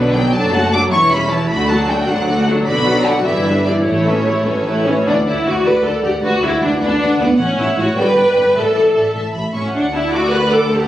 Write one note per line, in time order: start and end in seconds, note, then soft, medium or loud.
0.00 0.28 B1 soft
0.00 0.28 B2 soft
0.00 0.14 D3 soft
0.00 0.14 D4 soft
0.00 0.14 B4 soft
0.00 0.14 B4 medium
0.14 0.33 F#3 soft
0.14 0.34 B3 soft
0.14 0.34 F#4 soft
0.14 0.32 D5 soft
0.14 0.34 G5 medium
0.33 0.85 F#1 medium
0.33 0.85 F#2 soft
0.33 0.52 F#3 soft
0.33 0.52 D4 soft
0.33 0.52 A4 soft
0.33 0.52 D5 soft
0.33 0.73 A5 medium
0.54 0.73 A3 soft
0.54 0.73 F#4 soft
0.54 0.73 F#5 soft
0.72 0.92 F#3 soft
0.72 0.92 D4 soft
0.72 0.92 A4 soft
0.72 0.92 D5 soft
0.72 0.80 D6 medium
0.90 1.43 E1 soft
0.90 1.43 E2 soft
0.90 1.11 E3 soft
0.90 1.09 E4 soft
0.90 1.10 E4 soft
0.90 1.09 C#5 soft
0.90 1.11 C#6 medium
1.10 1.31 G3 soft
1.10 1.31 C#4 soft
1.10 1.30 G4 soft
1.10 1.30 E5 soft
1.10 1.30 B5 medium
1.30 1.50 E3 soft
1.30 1.50 E4 soft
1.30 1.49 C#5 soft
1.30 1.50 A5 medium
1.49 2.00 D2 medium
1.49 1.68 A3 soft
1.49 1.67 F#4 soft
1.49 1.68 F#4 soft
1.49 1.67 D5 soft
1.49 1.68 B5 medium
1.68 1.89 F#3 soft
1.68 1.89 D4 soft
1.68 1.88 A4 soft
1.68 1.87 F#5 soft
1.68 1.87 A5 medium
1.87 2.08 A3 soft
1.87 2.07 F#4 soft
1.87 2.08 F#4 soft
1.87 2.07 D5 soft
1.87 2.08 G5 medium
2.06 2.59 D2 medium
2.06 2.59 D2 soft
2.06 2.27 F#3 soft
2.06 2.27 D4 soft
2.06 2.26 A4 soft
2.06 2.26 F#5 soft
2.06 2.47 F#5 medium
2.25 2.46 A3 soft
2.25 2.44 F#4 soft
2.25 2.46 F#4 soft
2.25 2.44 D5 soft
2.45 2.67 F#3 soft
2.45 2.67 D4 soft
2.45 2.65 A4 soft
2.45 2.65 F#5 soft
2.64 3.18 B1 medium
2.64 3.17 B2 soft
2.64 2.85 D3 soft
2.64 2.85 F#4 soft
2.64 2.83 D5 soft
2.64 3.03 B5 medium
2.85 3.05 F#3 soft
2.85 3.05 D4 soft
2.85 3.05 B4 soft
2.85 3.05 F#5 soft
3.04 3.25 D3 soft
3.04 3.25 F#4 soft
3.04 3.22 D5 soft
3.04 3.25 F#5 medium
3.24 3.77 G1 soft
3.24 3.77 G2 soft
3.24 3.44 E3 soft
3.24 3.44 E4 soft
3.24 3.43 G4 soft
3.24 3.43 D5 soft
3.24 3.64 E5 medium
3.43 3.65 G3 soft
3.43 3.65 D4 soft
3.43 3.64 B4 soft
3.43 3.64 E5 soft
3.65 3.85 E3 soft
3.65 3.85 E4 soft
3.65 3.85 G4 soft
3.65 3.73 D5 soft
3.65 3.85 D5 soft
3.84 4.38 A1 soft
3.84 4.37 A2 soft
3.84 4.04 A3 soft
3.84 4.04 E4 soft
3.84 4.03 C#5 soft
3.84 4.84 C#5 soft
4.06 4.25 E3 soft
4.06 4.25 C#4 soft
4.06 4.25 A4 soft
4.06 4.25 E5 soft
4.26 4.45 A3 soft
4.26 4.45 E4 soft
4.26 4.45 C#5 soft
4.44 4.98 A1 soft
4.44 4.98 A2 soft
4.44 4.65 E3 soft
4.44 4.65 C#4 soft
4.44 4.63 A4 soft
4.65 4.84 A3 soft
4.65 4.84 E4 soft
4.65 4.86 B4 soft
4.85 5.06 E3 soft
4.85 5.06 C#4 soft
4.85 5.05 C#5 soft
5.05 5.13 D2 soft
5.05 5.15 D4 soft
5.05 5.25 D5 soft
5.05 5.26 F#5 soft
5.24 5.32 D2 soft
5.24 5.45 E4 soft
5.24 5.45 D5 soft
5.24 5.45 F#5 soft
5.44 5.52 D2 soft
5.44 5.65 F#4 soft
5.44 5.64 D5 soft
5.44 5.64 F#5 soft
5.63 5.71 D2 soft
5.63 5.84 B4 medium
5.63 5.84 D5 soft
5.63 5.83 F#5 soft
5.83 5.91 D2 soft
5.83 6.03 A4 soft
5.83 6.01 D5 soft
5.83 6.03 F#5 soft
6.02 6.10 D2 soft
6.02 6.11 D2 soft
6.02 6.12 G4 soft
6.02 6.21 D5 soft
6.02 6.22 F#5 soft
6.22 6.30 D2 soft
6.22 6.42 F#4 medium
6.22 6.41 B4 soft
6.22 6.41 D5 soft
6.22 6.41 F#5 soft
6.41 6.49 D2 soft
6.41 6.62 E4 medium
6.41 6.61 B4 soft
6.41 6.61 D5 soft
6.41 6.61 F#5 soft
6.61 6.69 D2 soft
6.61 6.70 D4 medium
6.61 6.79 B4 soft
6.61 6.79 D5 soft
6.61 6.80 F#5 soft
6.80 6.88 D2 soft
6.80 7.19 D4 medium
6.80 6.98 B4 soft
6.80 6.98 D5 soft
6.80 6.99 F#5 soft
6.99 7.08 D2 soft
6.99 7.17 B4 soft
6.99 7.17 D5 soft
6.99 7.19 F#5 soft
7.18 7.27 D2 soft
7.18 7.39 B3 medium
7.18 7.38 B4 soft
7.18 7.38 D5 soft
7.18 7.38 F#5 soft
7.37 7.46 A1 soft
7.37 7.46 A2 soft
7.37 7.58 C#4 medium
7.37 7.56 C#5 soft
7.37 7.56 F#5 soft
7.37 7.57 F#5 soft
7.57 7.65 A1 soft
7.57 7.66 A2 soft
7.57 7.78 E4 medium
7.57 7.76 C#5 soft
7.57 7.77 F#5 soft
7.57 7.75 F#5 soft
7.77 7.85 A1 soft
7.77 7.85 A2 soft
7.77 7.97 F#4 medium
7.77 7.97 C#5 soft
7.77 7.96 F#5 soft
7.77 7.97 F#5 soft
7.96 8.04 G1 soft
7.96 8.04 G2 soft
7.96 8.56 B4 medium
7.96 8.15 D5 soft
7.96 8.16 G5 soft
7.96 8.15 G5 soft
8.16 8.24 G1 soft
8.16 8.25 G2 soft
8.16 8.35 D5 soft
8.16 8.35 G5 soft
8.35 8.43 G1 soft
8.35 8.44 G2 soft
8.35 8.55 D5 soft
8.35 8.56 G5 soft
8.56 8.64 A1 soft
8.56 8.64 A2 soft
8.56 9.16 A4 medium
8.56 8.73 D5 soft
8.56 8.73 E5 soft
8.56 8.73 A5 soft
8.74 8.84 A1 soft
8.74 8.84 A2 soft
8.74 8.93 D5 soft
8.74 8.93 E5 soft
8.74 8.94 A5 soft
8.94 9.03 A1 soft
8.94 9.03 A2 soft
8.94 9.15 D5 soft
8.94 9.13 E5 soft
8.94 9.14 A5 soft
9.14 9.22 A1 soft
9.14 9.24 A2 soft
9.14 9.32 E5 soft
9.14 9.34 A5 soft
9.33 9.42 A1 soft
9.33 9.43 A2 soft
9.33 9.53 E5 soft
9.33 9.54 B5 soft
9.54 9.62 A1 soft
9.54 9.62 A2 soft
9.54 9.73 C#4 soft
9.54 9.74 E5 soft
9.54 9.75 C#6 soft
9.73 10.88 D2 soft
9.73 9.83 D4 medium
9.73 10.88 D5 soft
9.73 9.92 F#5 soft
9.73 10.88 F#5 soft
9.93 10.14 E4 medium
9.93 10.14 A5 soft
10.13 10.34 F#4 medium
10.13 10.33 D6 soft
10.33 10.53 B4 medium
10.33 10.53 F#6 soft
10.52 10.73 A4 medium
10.52 10.73 D6 soft
10.73 10.88 G4 medium
10.73 10.88 A5 soft